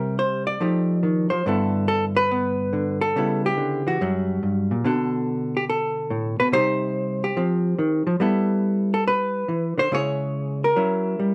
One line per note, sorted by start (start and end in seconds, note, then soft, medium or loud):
0.00 0.59 C3 medium
0.00 0.61 G3 medium
0.00 0.62 G4 soft
0.00 0.18 A#4 soft
0.19 0.46 C5 medium
0.47 1.30 D5 medium
0.60 1.30 F3 medium
0.60 1.03 A3 soft
0.60 1.44 D#4 soft
0.60 1.47 G4 soft
1.03 1.31 D#3 medium
1.30 1.45 F3 medium
1.30 1.44 C5 medium
1.46 3.13 G2 medium
1.46 2.72 D3 soft
1.46 2.30 B3 soft
1.46 3.14 E4 soft
1.46 1.87 A4 medium
1.88 2.04 A4 loud
2.17 3.01 B4 loud
2.31 3.13 B3 soft
2.73 3.14 D3 medium
3.01 3.43 A4 medium
3.16 3.98 C#3 medium
3.16 3.57 G3 soft
3.16 3.99 B3 soft
3.16 3.87 E4 soft
3.46 4.00 G4 medium
3.57 3.85 D3 medium
3.87 3.99 E3 medium
3.87 4.85 F#4 medium
4.01 4.42 F#2 medium
4.01 4.83 F#3 soft
4.01 4.85 G3 soft
4.43 4.70 G2 medium
4.71 4.84 A#2 medium
4.84 6.39 B2 medium
4.84 6.52 D3 medium
4.84 6.52 D4 soft
4.84 5.68 A4 medium
5.57 5.64 G4 medium
5.70 6.39 A4 medium
6.10 6.39 A2 medium
6.40 6.53 B2 medium
6.40 6.48 B4 loud
6.52 7.35 C3 medium
6.52 7.36 G3 medium
6.52 7.36 D#4 medium
6.52 7.24 G4 medium
6.52 7.37 C5 loud
7.24 8.08 G4 medium
7.37 7.78 F3 medium
7.37 8.20 C4 soft
7.79 8.06 D#3 medium
8.07 8.20 F3 medium
8.20 9.48 G3 medium
8.20 9.89 B3 medium
8.20 9.89 E4 soft
8.20 8.93 A4 medium
8.94 9.07 A4 medium
9.08 9.78 B4 medium
9.48 9.77 E3 medium
9.78 9.91 D3 medium
9.78 9.92 C5 loud
9.92 10.74 C#3 medium
9.92 10.74 G#3 medium
9.92 10.75 E4 medium
9.92 10.75 G#4 medium
9.92 10.63 C#5 loud
10.64 11.35 A#4 medium
10.76 11.18 F#3 medium
10.76 11.35 C#4 soft
10.76 11.35 E4 soft
11.20 11.35 G3 medium